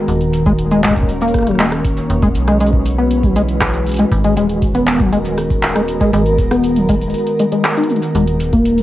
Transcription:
Already playing: D#3 F#4 A#4
0.08 D#1, closed hi-hat
0.21 A#3 C#4, closed hi-hat
0.33 closed hi-hat
0.46 G#3, kick, closed hi-hat
0.59 closed hi-hat
0.71 G#3, closed hi-hat
0.84 G#3, kick, clap, closed hi-hat
0.90 kick
0.96 kick, closed hi-hat
1.03 kick
1.09 closed hi-hat
1.22 A#3, closed hi-hat
1.28 closed hi-hat
1.34 kick, cross-stick, closed hi-hat
1.39 cross-stick, closed hi-hat
1.43 cross-stick
1.47 F#3, cross-stick, closed hi-hat
1.51 cross-stick
1.55 cross-stick
1.60 G#3, clap, closed hi-hat
1.72 cross-stick, closed hi-hat
1.85 kick, closed hi-hat
1.97 closed hi-hat
2.10 E1 E3, closed hi-hat
2.23 G#3, kick, closed hi-hat
2.30 G#3 B4
2.35 B1, closed hi-hat
2.48 G#3, cross-stick, closed hi-hat
2.60 G#3, closed hi-hat
2.67 closed hi-hat
2.73 kick
2.86 closed hi-hat
2.98 B3
3.11 closed hi-hat
3.23 F#3, kick, closed hi-hat
3.36 G#3, closed hi-hat
3.49 closed hi-hat
3.61 kick, cross-stick, clap, closed hi-hat
3.74 closed hi-hat
3.86 closed hi-hat
3.89 closed hi-hat
3.92 closed hi-hat
3.94 closed hi-hat
3.96 G#3, closed hi-hat
4.12 G#1 D#3, kick, closed hi-hat
4.24 G#3 A#4, closed hi-hat
4.37 D#1 G#3, closed hi-hat
4.49 closed hi-hat
4.62 kick, closed hi-hat
4.68 B3
4.75 B3, closed hi-hat
4.87 clap, closed hi-hat
5.00 F#3, kick, closed hi-hat
5.12 G#3, closed hi-hat
5.25 closed hi-hat
5.38 cross-stick, closed hi-hat
5.50 kick, closed hi-hat
5.63 clap, closed hi-hat
5.76 G#3, cross-stick, closed hi-hat
5.88 closed hi-hat
6.01 G#3, kick, closed hi-hat
6.13 G#1 G#3, closed hi-hat
6.26 closed hi-hat
6.38 D#1, kick, closed hi-hat
6.51 B3, cross-stick, closed hi-hat
6.64 closed hi-hat
6.76 F#3, closed hi-hat
6.89 G#3, kick, closed hi-hat
7.02 closed hi-hat
7.10 closed hi-hat
7.14 closed hi-hat
7.18 closed hi-hat
7.27 closed hi-hat
7.39 G#3, closed hi-hat
7.52 G#3, closed hi-hat
7.64 cross-stick, clap, closed hi-hat
7.77 D#4, closed hi-hat
7.83 closed hi-hat
7.90 G#3, closed hi-hat
7.96 closed hi-hat
8.02 closed hi-hat
8.15 D#1 G#3, closed hi-hat
8.27 closed hi-hat
8.40 A#3, closed hi-hat
8.48 C#4
8.53 A#3, kick, closed hi-hat
8.58 F#4
8.65 closed hi-hat
8.78 F#3, closed hi-hat

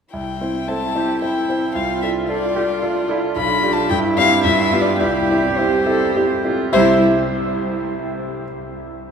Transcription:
0.13 C2 E4 G5
0.41 C4 E4 C5
0.68 C4 E4 A4 C5 A5
0.95 C4 E4 G4 C5
1.22 C4 E4 C5 G5
1.49 C4 E4 C5
1.74 C2 F4 F5
2.02 D4 F4 A4 E5
2.28 D4 F4 A4 D5
2.55 D4 F4 G4 A4
2.82 D4 F4 A4
3.08 D4 E4 F4 A4
3.36 B1 D4 B5
3.63 D4 F4 G4
3.72 A5
3.90 G2 E4 G5
4.17 C4 E4 G4 F5
4.44 G2 F4 E5
4.73 B3 F4 G4
4.81 D5
4.99 C2 E4 G4 D5
5.30 C4 E4 G4
5.57 C4 E4 G4 C5
5.86 C4 E4 G4 A4
6.16 C4 E4 G4
6.44 C4 E4 F4 G4
6.72 C2 C3 G3 C4 E4 G4 C5 E5

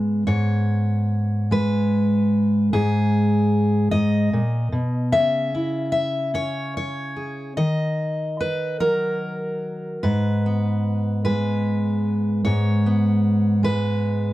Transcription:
Already playing: G#2 G#3 B3 B4
0.27 G#2 C#5
1.51 G#3 B4
2.73 G#2 G#4
3.91 G#2 D#5
4.33 A#2
4.72 B2
5.12 C#3 E5
5.55 E4
5.92 E5
6.34 C#4 C#5
6.77 C#5
7.16 G#4
7.57 D#3 D#5
8.40 B4
8.80 F#3 A#4
10.03 G#2 B4
10.46 B3
11.25 G#3 B4
12.45 G#2 C#5
12.86 B3
13.63 G#3 B4

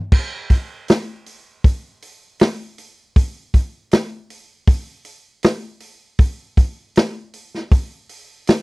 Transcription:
0.12 kick, crash
0.50 kick, open hi-hat
0.88 snare, open hi-hat
1.26 open hi-hat
1.64 kick, open hi-hat
2.02 open hi-hat
2.40 snare, open hi-hat
2.78 open hi-hat
3.16 kick, open hi-hat
3.54 kick, open hi-hat
3.91 snare, open hi-hat
4.30 open hi-hat
4.67 kick, open hi-hat
5.05 open hi-hat
5.43 snare, open hi-hat
5.80 open hi-hat
6.19 kick, open hi-hat
6.57 kick, open hi-hat
6.96 snare, open hi-hat
7.34 open hi-hat
7.55 snare
7.72 kick, open hi-hat
8.09 open hi-hat
8.47 snare, open hi-hat

